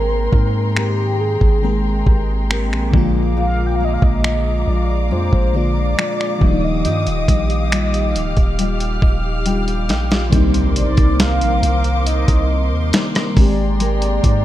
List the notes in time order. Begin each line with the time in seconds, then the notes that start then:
Already playing: G#1 D#3 G#3 A#3 C4 A#4 G5 A#5 C6
0.32 G#2 C4, kick
0.76 C4 G4 A#4, finger snap
1.20 G#4
1.41 G#1, kick
1.62 D#3 G#3 A#3 C4 A#4
2.06 G#1 G4, kick
2.50 C4 G4 A#4, finger snap
2.72 A#1, finger snap
2.91 A#1 A#2 D3 F3 G#3 F5 A#5 D6, kick
2.96 A#3 F4
3.37 A#2 F4 F5
3.66 G5
3.75 F5
3.80 G#3
3.85 D#5
3.94 F5
4.02 A#1 D#5, kick
4.24 G#3 F4, finger snap
4.67 A#1 D5
5.11 F2 G#3 D4 F4 C5
5.33 A#1, kick
5.53 D3 F3 G#3 A#3 D4 F4 D5
5.98 G#3 D4 F4, finger snap
6.21 finger snap
6.39 D#1 D#3 F3 G3 G4 D#6, kick
6.43 A#3 D4
6.52 D#4
6.64 D#5
6.85 G2 D#3 F4, closed hi-hat
7.07 D#1, closed hi-hat
7.28 A#1 G3, kick, closed hi-hat
7.50 closed hi-hat
7.72 G3 F4, finger snap, closed hi-hat
7.94 closed hi-hat
8.15 D1 F6, closed hi-hat
8.37 D#1, kick, closed hi-hat
8.59 G3 F4, closed hi-hat
8.80 closed hi-hat
9.02 D#1 D#5, kick
9.46 G3 D4 F4 G5, closed hi-hat
9.68 closed hi-hat
9.89 A#1 D#4 G5, snare, closed hi-hat
10.11 F4, snare
10.30 C2 C3 D#3 G3 A#3 D4 A#4 C5 C6 D6, kick, closed hi-hat, impact
10.35 C4 D#4
10.54 closed hi-hat
10.76 A#1 D5, closed hi-hat
10.97 C2, kick, closed hi-hat
11.20 D#3 A#3 F5, snare, closed hi-hat
11.41 A#1, closed hi-hat
11.63 C2, closed hi-hat
11.84 closed hi-hat
12.06 D#3 D#5, closed hi-hat
12.28 C2, kick, closed hi-hat
12.71 D#2
12.93 D#3 A#3 D4, snare, closed hi-hat
13.15 cross-stick, snare, closed hi-hat
13.34 G#1 D#3 G#3 A#3 D5 G5 A#5, kick, open hi-hat
13.39 C4 G4
13.80 G#3 A#4, closed hi-hat
14.02 closed hi-hat
14.24 G#2, kick, closed hi-hat